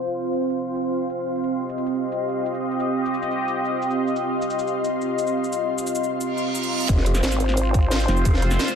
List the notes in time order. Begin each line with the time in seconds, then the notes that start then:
Already playing: C4 F4 C5 F5 C6
0.07 shaker
0.33 shaker
0.41 shaker
0.50 shaker
0.58 shaker
0.75 shaker
0.92 shaker
1.09 shaker
1.18 shaker
1.35 shaker
1.43 G4 D#5, shaker
1.69 shaker
1.78 shaker
1.86 shaker
1.95 shaker
2.12 shaker
2.29 shaker
2.46 shaker
2.54 shaker
2.71 shaker
2.80 shaker
3.05 shaker
3.14 shaker
3.22 shaker
3.31 shaker
3.48 shaker
3.65 shaker
3.82 shaker
3.91 shaker
4.08 shaker
4.16 shaker
4.42 shaker
4.50 shaker
4.59 shaker
4.67 shaker
4.84 shaker
5.02 shaker
5.18 shaker
5.27 shaker
5.44 shaker
5.53 shaker
5.78 shaker
5.87 shaker
5.95 shaker
6.04 shaker
6.21 reverse cymbal, shaker
6.38 shaker
6.55 shaker
6.63 shaker
6.81 shaker
6.89 F1 C4 F4 C5, kick, closed hi-hat, shaker
6.98 snare
7.06 closed hi-hat
7.15 snare, shaker
7.23 G#1, snare, closed hi-hat, shaker
7.32 snare, shaker
7.40 closed hi-hat, shaker
7.49 snare
7.57 closed hi-hat, shaker
7.74 kick, closed hi-hat, shaker
7.91 snare, closed hi-hat, shaker
8.00 shaker
8.08 F1, snare, closed hi-hat
8.17 shaker
8.25 kick, closed hi-hat, shaker
8.34 snare
8.42 closed hi-hat
8.51 snare, shaker
8.59 snare, closed hi-hat, shaker
8.68 snare, shaker